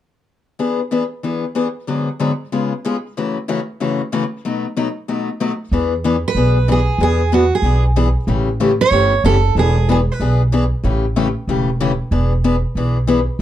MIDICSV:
0, 0, Header, 1, 4, 480
1, 0, Start_track
1, 0, Tempo, 320171
1, 892, Time_signature, 4, 2, 24, 8
1, 20116, End_track
2, 0, Start_track
2, 0, Title_t, "Steel-string acoustic guitar"
2, 0, Program_c, 0, 25
2, 9411, Note_on_c, 0, 71, 88
2, 10007, Note_off_c, 0, 71, 0
2, 10071, Note_on_c, 0, 68, 74
2, 10519, Note_off_c, 0, 68, 0
2, 10537, Note_on_c, 0, 68, 84
2, 10966, Note_off_c, 0, 68, 0
2, 11004, Note_on_c, 0, 66, 73
2, 11288, Note_off_c, 0, 66, 0
2, 11317, Note_on_c, 0, 68, 71
2, 11740, Note_off_c, 0, 68, 0
2, 13209, Note_on_c, 0, 73, 99
2, 13871, Note_off_c, 0, 73, 0
2, 13877, Note_on_c, 0, 69, 81
2, 14314, Note_off_c, 0, 69, 0
2, 14380, Note_on_c, 0, 68, 79
2, 14806, Note_off_c, 0, 68, 0
2, 14865, Note_on_c, 0, 68, 73
2, 14940, Note_off_c, 0, 68, 0
2, 15165, Note_on_c, 0, 71, 71
2, 15614, Note_off_c, 0, 71, 0
2, 20116, End_track
3, 0, Start_track
3, 0, Title_t, "Steel-string acoustic guitar"
3, 0, Program_c, 1, 25
3, 885, Note_on_c, 1, 52, 53
3, 887, Note_on_c, 1, 59, 55
3, 893, Note_on_c, 1, 62, 53
3, 897, Note_on_c, 1, 68, 62
3, 1189, Note_off_c, 1, 52, 0
3, 1190, Note_off_c, 1, 59, 0
3, 1194, Note_off_c, 1, 62, 0
3, 1195, Note_off_c, 1, 68, 0
3, 1364, Note_on_c, 1, 52, 71
3, 1373, Note_on_c, 1, 59, 64
3, 1380, Note_on_c, 1, 62, 74
3, 1383, Note_on_c, 1, 68, 82
3, 1531, Note_off_c, 1, 52, 0
3, 1535, Note_off_c, 1, 59, 0
3, 1539, Note_off_c, 1, 62, 0
3, 1540, Note_off_c, 1, 68, 0
3, 1847, Note_on_c, 1, 52, 54
3, 1858, Note_on_c, 1, 59, 60
3, 1861, Note_on_c, 1, 62, 58
3, 1866, Note_on_c, 1, 68, 59
3, 2151, Note_off_c, 1, 52, 0
3, 2157, Note_off_c, 1, 59, 0
3, 2158, Note_off_c, 1, 62, 0
3, 2160, Note_off_c, 1, 68, 0
3, 2324, Note_on_c, 1, 52, 72
3, 2329, Note_on_c, 1, 59, 77
3, 2335, Note_on_c, 1, 62, 75
3, 2339, Note_on_c, 1, 68, 73
3, 2491, Note_off_c, 1, 52, 0
3, 2494, Note_off_c, 1, 59, 0
3, 2497, Note_off_c, 1, 62, 0
3, 2499, Note_off_c, 1, 68, 0
3, 2808, Note_on_c, 1, 44, 53
3, 2816, Note_on_c, 1, 50, 54
3, 2816, Note_on_c, 1, 54, 49
3, 2820, Note_on_c, 1, 59, 57
3, 2826, Note_on_c, 1, 68, 59
3, 2827, Note_on_c, 1, 66, 56
3, 3112, Note_off_c, 1, 44, 0
3, 3116, Note_off_c, 1, 50, 0
3, 3116, Note_off_c, 1, 54, 0
3, 3118, Note_off_c, 1, 59, 0
3, 3121, Note_off_c, 1, 66, 0
3, 3121, Note_off_c, 1, 68, 0
3, 3291, Note_on_c, 1, 44, 71
3, 3297, Note_on_c, 1, 50, 75
3, 3300, Note_on_c, 1, 54, 83
3, 3306, Note_on_c, 1, 59, 72
3, 3306, Note_on_c, 1, 66, 81
3, 3309, Note_on_c, 1, 68, 77
3, 3456, Note_off_c, 1, 44, 0
3, 3459, Note_off_c, 1, 50, 0
3, 3460, Note_off_c, 1, 54, 0
3, 3463, Note_off_c, 1, 59, 0
3, 3463, Note_off_c, 1, 66, 0
3, 3465, Note_off_c, 1, 68, 0
3, 3781, Note_on_c, 1, 49, 58
3, 3782, Note_on_c, 1, 56, 61
3, 3786, Note_on_c, 1, 59, 56
3, 3789, Note_on_c, 1, 65, 60
3, 3794, Note_on_c, 1, 68, 62
3, 4079, Note_off_c, 1, 49, 0
3, 4080, Note_off_c, 1, 56, 0
3, 4082, Note_off_c, 1, 59, 0
3, 4083, Note_off_c, 1, 65, 0
3, 4086, Note_off_c, 1, 68, 0
3, 4267, Note_on_c, 1, 49, 74
3, 4277, Note_on_c, 1, 56, 78
3, 4280, Note_on_c, 1, 59, 77
3, 4286, Note_on_c, 1, 65, 81
3, 4286, Note_on_c, 1, 68, 84
3, 4424, Note_off_c, 1, 49, 0
3, 4429, Note_off_c, 1, 56, 0
3, 4431, Note_off_c, 1, 59, 0
3, 4434, Note_off_c, 1, 65, 0
3, 4434, Note_off_c, 1, 68, 0
3, 4754, Note_on_c, 1, 42, 59
3, 4758, Note_on_c, 1, 49, 51
3, 4760, Note_on_c, 1, 57, 60
3, 4763, Note_on_c, 1, 52, 64
3, 4763, Note_on_c, 1, 61, 58
3, 4772, Note_on_c, 1, 66, 64
3, 5046, Note_off_c, 1, 42, 0
3, 5048, Note_off_c, 1, 49, 0
3, 5049, Note_off_c, 1, 57, 0
3, 5051, Note_off_c, 1, 52, 0
3, 5051, Note_off_c, 1, 61, 0
3, 5055, Note_off_c, 1, 66, 0
3, 5220, Note_on_c, 1, 42, 73
3, 5225, Note_on_c, 1, 49, 74
3, 5226, Note_on_c, 1, 57, 77
3, 5230, Note_on_c, 1, 52, 75
3, 5233, Note_on_c, 1, 61, 85
3, 5236, Note_on_c, 1, 66, 86
3, 5381, Note_off_c, 1, 42, 0
3, 5384, Note_off_c, 1, 49, 0
3, 5385, Note_off_c, 1, 57, 0
3, 5386, Note_off_c, 1, 52, 0
3, 5388, Note_off_c, 1, 61, 0
3, 5389, Note_off_c, 1, 66, 0
3, 5701, Note_on_c, 1, 42, 56
3, 5706, Note_on_c, 1, 49, 58
3, 5710, Note_on_c, 1, 57, 58
3, 5713, Note_on_c, 1, 52, 60
3, 5716, Note_on_c, 1, 61, 66
3, 5718, Note_on_c, 1, 66, 65
3, 6000, Note_off_c, 1, 42, 0
3, 6003, Note_off_c, 1, 49, 0
3, 6005, Note_off_c, 1, 57, 0
3, 6006, Note_off_c, 1, 52, 0
3, 6008, Note_off_c, 1, 61, 0
3, 6009, Note_off_c, 1, 66, 0
3, 6180, Note_on_c, 1, 42, 75
3, 6186, Note_on_c, 1, 57, 78
3, 6188, Note_on_c, 1, 49, 77
3, 6189, Note_on_c, 1, 52, 80
3, 6191, Note_on_c, 1, 61, 85
3, 6196, Note_on_c, 1, 66, 86
3, 6342, Note_off_c, 1, 42, 0
3, 6345, Note_off_c, 1, 57, 0
3, 6346, Note_off_c, 1, 49, 0
3, 6346, Note_off_c, 1, 52, 0
3, 6347, Note_off_c, 1, 61, 0
3, 6350, Note_off_c, 1, 66, 0
3, 6670, Note_on_c, 1, 47, 52
3, 6670, Note_on_c, 1, 54, 57
3, 6680, Note_on_c, 1, 57, 57
3, 6680, Note_on_c, 1, 63, 58
3, 6683, Note_on_c, 1, 66, 64
3, 6965, Note_off_c, 1, 47, 0
3, 6965, Note_off_c, 1, 54, 0
3, 6970, Note_off_c, 1, 57, 0
3, 6970, Note_off_c, 1, 63, 0
3, 6972, Note_off_c, 1, 66, 0
3, 7144, Note_on_c, 1, 47, 74
3, 7150, Note_on_c, 1, 54, 71
3, 7151, Note_on_c, 1, 63, 85
3, 7153, Note_on_c, 1, 57, 71
3, 7158, Note_on_c, 1, 66, 75
3, 7304, Note_off_c, 1, 47, 0
3, 7307, Note_off_c, 1, 54, 0
3, 7308, Note_off_c, 1, 63, 0
3, 7309, Note_off_c, 1, 57, 0
3, 7311, Note_off_c, 1, 66, 0
3, 7620, Note_on_c, 1, 47, 54
3, 7623, Note_on_c, 1, 54, 54
3, 7625, Note_on_c, 1, 57, 62
3, 7631, Note_on_c, 1, 66, 62
3, 7633, Note_on_c, 1, 63, 56
3, 7920, Note_off_c, 1, 47, 0
3, 7922, Note_off_c, 1, 54, 0
3, 7923, Note_off_c, 1, 57, 0
3, 7926, Note_off_c, 1, 66, 0
3, 7927, Note_off_c, 1, 63, 0
3, 8100, Note_on_c, 1, 47, 73
3, 8102, Note_on_c, 1, 54, 82
3, 8105, Note_on_c, 1, 57, 75
3, 8111, Note_on_c, 1, 63, 78
3, 8114, Note_on_c, 1, 66, 82
3, 8262, Note_off_c, 1, 47, 0
3, 8264, Note_off_c, 1, 54, 0
3, 8265, Note_off_c, 1, 57, 0
3, 8268, Note_off_c, 1, 63, 0
3, 8269, Note_off_c, 1, 66, 0
3, 8584, Note_on_c, 1, 52, 62
3, 8587, Note_on_c, 1, 59, 59
3, 8595, Note_on_c, 1, 62, 66
3, 8600, Note_on_c, 1, 68, 67
3, 8882, Note_off_c, 1, 52, 0
3, 8884, Note_off_c, 1, 59, 0
3, 8888, Note_off_c, 1, 62, 0
3, 8891, Note_off_c, 1, 68, 0
3, 9060, Note_on_c, 1, 52, 82
3, 9070, Note_on_c, 1, 59, 77
3, 9070, Note_on_c, 1, 62, 81
3, 9076, Note_on_c, 1, 68, 82
3, 9222, Note_off_c, 1, 52, 0
3, 9227, Note_off_c, 1, 62, 0
3, 9228, Note_off_c, 1, 59, 0
3, 9230, Note_off_c, 1, 68, 0
3, 9543, Note_on_c, 1, 52, 58
3, 9548, Note_on_c, 1, 59, 60
3, 9551, Note_on_c, 1, 62, 63
3, 9561, Note_on_c, 1, 68, 61
3, 9842, Note_off_c, 1, 52, 0
3, 9845, Note_off_c, 1, 59, 0
3, 9846, Note_off_c, 1, 62, 0
3, 9851, Note_off_c, 1, 68, 0
3, 10015, Note_on_c, 1, 52, 76
3, 10020, Note_on_c, 1, 59, 78
3, 10030, Note_on_c, 1, 62, 84
3, 10031, Note_on_c, 1, 68, 86
3, 10180, Note_off_c, 1, 52, 0
3, 10182, Note_off_c, 1, 59, 0
3, 10187, Note_off_c, 1, 62, 0
3, 10188, Note_off_c, 1, 68, 0
3, 10498, Note_on_c, 1, 52, 58
3, 10504, Note_on_c, 1, 59, 56
3, 10509, Note_on_c, 1, 62, 63
3, 10509, Note_on_c, 1, 68, 61
3, 10799, Note_off_c, 1, 52, 0
3, 10802, Note_off_c, 1, 59, 0
3, 10805, Note_off_c, 1, 62, 0
3, 10805, Note_off_c, 1, 68, 0
3, 10976, Note_on_c, 1, 52, 81
3, 10980, Note_on_c, 1, 59, 76
3, 10987, Note_on_c, 1, 62, 84
3, 10988, Note_on_c, 1, 68, 83
3, 11140, Note_off_c, 1, 52, 0
3, 11142, Note_off_c, 1, 59, 0
3, 11145, Note_off_c, 1, 62, 0
3, 11146, Note_off_c, 1, 68, 0
3, 11456, Note_on_c, 1, 52, 57
3, 11458, Note_on_c, 1, 59, 63
3, 11466, Note_on_c, 1, 62, 63
3, 11466, Note_on_c, 1, 68, 69
3, 11758, Note_off_c, 1, 52, 0
3, 11759, Note_off_c, 1, 59, 0
3, 11763, Note_off_c, 1, 62, 0
3, 11763, Note_off_c, 1, 68, 0
3, 11935, Note_on_c, 1, 52, 82
3, 11938, Note_on_c, 1, 59, 83
3, 11942, Note_on_c, 1, 62, 89
3, 11947, Note_on_c, 1, 68, 88
3, 12099, Note_off_c, 1, 52, 0
3, 12101, Note_off_c, 1, 59, 0
3, 12103, Note_off_c, 1, 62, 0
3, 12105, Note_off_c, 1, 68, 0
3, 12408, Note_on_c, 1, 49, 57
3, 12409, Note_on_c, 1, 52, 61
3, 12413, Note_on_c, 1, 57, 62
3, 12415, Note_on_c, 1, 61, 57
3, 12420, Note_on_c, 1, 67, 67
3, 12714, Note_off_c, 1, 49, 0
3, 12714, Note_off_c, 1, 52, 0
3, 12716, Note_off_c, 1, 57, 0
3, 12717, Note_off_c, 1, 61, 0
3, 12720, Note_off_c, 1, 67, 0
3, 12893, Note_on_c, 1, 49, 76
3, 12898, Note_on_c, 1, 52, 75
3, 12900, Note_on_c, 1, 57, 86
3, 12902, Note_on_c, 1, 61, 92
3, 12907, Note_on_c, 1, 67, 90
3, 13058, Note_off_c, 1, 49, 0
3, 13060, Note_off_c, 1, 52, 0
3, 13061, Note_off_c, 1, 57, 0
3, 13062, Note_off_c, 1, 61, 0
3, 13065, Note_off_c, 1, 67, 0
3, 13375, Note_on_c, 1, 49, 59
3, 13384, Note_on_c, 1, 52, 61
3, 13384, Note_on_c, 1, 57, 63
3, 13388, Note_on_c, 1, 67, 63
3, 13394, Note_on_c, 1, 61, 64
3, 13677, Note_off_c, 1, 49, 0
3, 13681, Note_off_c, 1, 52, 0
3, 13681, Note_off_c, 1, 57, 0
3, 13683, Note_off_c, 1, 67, 0
3, 13686, Note_off_c, 1, 61, 0
3, 13860, Note_on_c, 1, 49, 81
3, 13860, Note_on_c, 1, 52, 83
3, 13863, Note_on_c, 1, 57, 91
3, 13873, Note_on_c, 1, 61, 83
3, 13878, Note_on_c, 1, 67, 83
3, 14021, Note_off_c, 1, 49, 0
3, 14021, Note_off_c, 1, 52, 0
3, 14022, Note_off_c, 1, 57, 0
3, 14027, Note_off_c, 1, 61, 0
3, 14030, Note_off_c, 1, 67, 0
3, 14340, Note_on_c, 1, 52, 60
3, 14350, Note_on_c, 1, 59, 56
3, 14352, Note_on_c, 1, 68, 62
3, 14353, Note_on_c, 1, 62, 68
3, 14638, Note_off_c, 1, 52, 0
3, 14643, Note_off_c, 1, 59, 0
3, 14645, Note_off_c, 1, 62, 0
3, 14645, Note_off_c, 1, 68, 0
3, 14821, Note_on_c, 1, 52, 76
3, 14825, Note_on_c, 1, 59, 77
3, 14829, Note_on_c, 1, 62, 92
3, 14839, Note_on_c, 1, 68, 88
3, 14980, Note_off_c, 1, 52, 0
3, 14983, Note_off_c, 1, 59, 0
3, 14985, Note_off_c, 1, 62, 0
3, 14990, Note_off_c, 1, 68, 0
3, 15297, Note_on_c, 1, 52, 59
3, 15300, Note_on_c, 1, 59, 59
3, 15305, Note_on_c, 1, 62, 62
3, 15316, Note_on_c, 1, 68, 64
3, 15596, Note_off_c, 1, 52, 0
3, 15598, Note_off_c, 1, 59, 0
3, 15600, Note_off_c, 1, 62, 0
3, 15606, Note_off_c, 1, 68, 0
3, 15775, Note_on_c, 1, 52, 80
3, 15783, Note_on_c, 1, 59, 79
3, 15792, Note_on_c, 1, 62, 77
3, 15794, Note_on_c, 1, 68, 87
3, 15937, Note_off_c, 1, 52, 0
3, 15941, Note_off_c, 1, 59, 0
3, 15946, Note_off_c, 1, 62, 0
3, 15947, Note_off_c, 1, 68, 0
3, 16244, Note_on_c, 1, 49, 58
3, 16255, Note_on_c, 1, 57, 59
3, 16256, Note_on_c, 1, 52, 57
3, 16260, Note_on_c, 1, 67, 64
3, 16265, Note_on_c, 1, 61, 62
3, 16549, Note_off_c, 1, 49, 0
3, 16555, Note_off_c, 1, 52, 0
3, 16555, Note_off_c, 1, 57, 0
3, 16557, Note_off_c, 1, 67, 0
3, 16559, Note_off_c, 1, 61, 0
3, 16733, Note_on_c, 1, 49, 74
3, 16736, Note_on_c, 1, 57, 85
3, 16738, Note_on_c, 1, 52, 78
3, 16744, Note_on_c, 1, 61, 89
3, 16745, Note_on_c, 1, 67, 87
3, 16895, Note_off_c, 1, 49, 0
3, 16897, Note_off_c, 1, 57, 0
3, 16898, Note_off_c, 1, 52, 0
3, 16901, Note_off_c, 1, 61, 0
3, 16901, Note_off_c, 1, 67, 0
3, 17222, Note_on_c, 1, 49, 63
3, 17223, Note_on_c, 1, 52, 58
3, 17228, Note_on_c, 1, 57, 67
3, 17228, Note_on_c, 1, 61, 57
3, 17237, Note_on_c, 1, 67, 67
3, 17518, Note_off_c, 1, 49, 0
3, 17518, Note_off_c, 1, 52, 0
3, 17520, Note_off_c, 1, 57, 0
3, 17520, Note_off_c, 1, 61, 0
3, 17525, Note_off_c, 1, 67, 0
3, 17697, Note_on_c, 1, 49, 86
3, 17700, Note_on_c, 1, 52, 91
3, 17703, Note_on_c, 1, 57, 85
3, 17705, Note_on_c, 1, 67, 83
3, 17708, Note_on_c, 1, 61, 87
3, 17857, Note_off_c, 1, 49, 0
3, 17858, Note_off_c, 1, 52, 0
3, 17860, Note_off_c, 1, 57, 0
3, 17861, Note_off_c, 1, 67, 0
3, 17862, Note_off_c, 1, 61, 0
3, 18165, Note_on_c, 1, 52, 64
3, 18167, Note_on_c, 1, 59, 60
3, 18169, Note_on_c, 1, 62, 59
3, 18173, Note_on_c, 1, 68, 65
3, 18468, Note_off_c, 1, 52, 0
3, 18469, Note_off_c, 1, 59, 0
3, 18470, Note_off_c, 1, 62, 0
3, 18472, Note_off_c, 1, 68, 0
3, 18653, Note_on_c, 1, 52, 73
3, 18655, Note_on_c, 1, 59, 91
3, 18657, Note_on_c, 1, 62, 79
3, 18663, Note_on_c, 1, 68, 89
3, 18814, Note_off_c, 1, 52, 0
3, 18815, Note_off_c, 1, 59, 0
3, 18816, Note_off_c, 1, 62, 0
3, 18819, Note_off_c, 1, 68, 0
3, 19143, Note_on_c, 1, 52, 56
3, 19144, Note_on_c, 1, 59, 64
3, 19152, Note_on_c, 1, 62, 62
3, 19155, Note_on_c, 1, 68, 69
3, 19437, Note_off_c, 1, 52, 0
3, 19437, Note_off_c, 1, 59, 0
3, 19441, Note_off_c, 1, 62, 0
3, 19442, Note_off_c, 1, 68, 0
3, 19600, Note_on_c, 1, 52, 83
3, 19613, Note_on_c, 1, 59, 86
3, 19616, Note_on_c, 1, 68, 99
3, 19619, Note_on_c, 1, 62, 89
3, 19767, Note_off_c, 1, 52, 0
3, 19773, Note_off_c, 1, 59, 0
3, 19774, Note_off_c, 1, 68, 0
3, 19776, Note_off_c, 1, 62, 0
3, 20116, End_track
4, 0, Start_track
4, 0, Title_t, "Upright bass"
4, 0, Program_c, 2, 32
4, 8568, Note_on_c, 2, 40, 80
4, 9341, Note_off_c, 2, 40, 0
4, 9517, Note_on_c, 2, 35, 73
4, 10294, Note_off_c, 2, 35, 0
4, 10471, Note_on_c, 2, 40, 81
4, 11250, Note_off_c, 2, 40, 0
4, 11423, Note_on_c, 2, 35, 73
4, 12205, Note_off_c, 2, 35, 0
4, 12399, Note_on_c, 2, 33, 80
4, 13174, Note_off_c, 2, 33, 0
4, 13358, Note_on_c, 2, 31, 74
4, 13774, Note_off_c, 2, 31, 0
4, 13849, Note_on_c, 2, 30, 74
4, 14260, Note_off_c, 2, 30, 0
4, 14319, Note_on_c, 2, 28, 76
4, 15093, Note_off_c, 2, 28, 0
4, 15286, Note_on_c, 2, 35, 73
4, 16057, Note_off_c, 2, 35, 0
4, 16244, Note_on_c, 2, 33, 82
4, 17015, Note_off_c, 2, 33, 0
4, 17203, Note_on_c, 2, 28, 67
4, 17974, Note_off_c, 2, 28, 0
4, 18157, Note_on_c, 2, 28, 76
4, 18929, Note_off_c, 2, 28, 0
4, 19118, Note_on_c, 2, 35, 70
4, 19890, Note_off_c, 2, 35, 0
4, 20116, End_track
0, 0, End_of_file